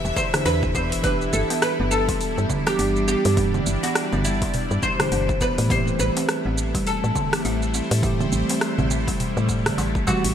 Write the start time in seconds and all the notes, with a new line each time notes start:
Already playing: E3 B3 D4 E4 G4 A4 E5
0.05 E1, darbuka ka, darbuka tek, shaker
0.16 D3 C5, kick, shaker
0.32 E3 B3 D4, cross-stick, open hi-hat, darbuka tek, low conga, shaker
0.36 G4
0.45 E2 D4 B4, open hi-hat, shaker
0.63 kick, darbuka ka, shaker
0.75 B3 C5, kick, shaker
0.92 G1, open hi-hat, shaker
1.02 E3 G3 B3 D4 G4 B4, kick, open hi-hat, shaker
1.21 shaker
1.33 G1 A4, darbuka ka, shaker
1.50 B3, open hi-hat, darbuka tek, shaker
1.60 D4 B4, cross-stick, open hi-hat, shaker
1.80 G1 B3
1.91 A4, shaker
2.09 E3, kick, open hi-hat, shaker
2.21 open hi-hat, shaker
2.38 G2, darbuka ka, shaker
2.49 D3, kick, darbuka ka, low conga, shaker
2.65 E3 B3 D4 G4 D5, cross-stick, open hi-hat, darbuka tek, shaker
2.69 G4
2.79 G1 D4, open hi-hat, darbuka ka, shaker
2.96 shaker
3.08 B3 G4, shaker
3.25 G2, open hi-hat, shaker
3.35 E3 B3 D4, kick, open hi-hat, shaker
3.40 G3
3.54 low conga, shaker
3.66 G1, darbuka ka, shaker
3.83 B3 F#4, open hi-hat, shaker
3.95 cross-stick, open hi-hat, shaker
4.13 G1 B3, low conga, shaker
4.25 E4, shaker
4.42 E3, kick, open hi-hat, shaker
4.54 open hi-hat, darbuka tek, darbuka dum, shaker
4.71 G2, darbuka ka, shaker
4.83 D3 C5, kick, shaker
4.98 B2 E3 D4, cross-stick, open hi-hat, low conga, shaker
5.02 G4
5.12 G1 D4, open hi-hat, shaker
5.29 kick, darbuka ka, shaker
5.41 B3 B4, kick, shaker
5.58 A2, open hi-hat, shaker
5.68 E3 A3 C4 E4 C5, kick, open hi-hat, shaker
5.72 G4
5.88 shaker
5.99 A1 B4, darbuka ka, shaker
6.17 C4, open hi-hat, darbuka tek, shaker
6.29 cross-stick, open hi-hat, shaker
6.38 G3
6.46 A1 C4
6.58 shaker
6.75 G3, kick, open hi-hat, shaker
6.83 A4 C5, open hi-hat, shaker
7.04 A2, darbuka ka, shaker
7.16 E3, kick, darbuka ka, low conga, shaker
7.31 E3 A3 C4, cross-stick, open hi-hat, darbuka tek, shaker
7.35 G4
7.45 A1 E4, open hi-hat, darbuka ka, shaker
7.62 shaker
7.74 C4, shaker
7.91 A2, open hi-hat, shaker
8.01 E3 A3 C4 E4 G4, kick, open hi-hat, shaker
8.21 low conga, shaker
8.32 A1, darbuka ka, shaker
8.49 C4, open hi-hat, darbuka tek, shaker
8.61 cross-stick, open hi-hat, shaker
8.78 A1 C4, darbuka dum, low conga, shaker
8.91 darbuka tek, shaker
9.08 G3, kick, open hi-hat, shaker
9.20 open hi-hat, darbuka tek, darbuka dum, shaker
9.37 A2, darbuka ka, shaker
9.49 A3, kick, shaker
9.66 cross-stick, open hi-hat, darbuka tek, low conga, shaker
9.78 A1 E3, open hi-hat, shaker
9.95 kick, darbuka ka, shaker
10.06 E3 G3 A3 C4 F#4 G4, kick, darbuka ka, darbuka dum, shaker
10.24 A1, open hi-hat, shaker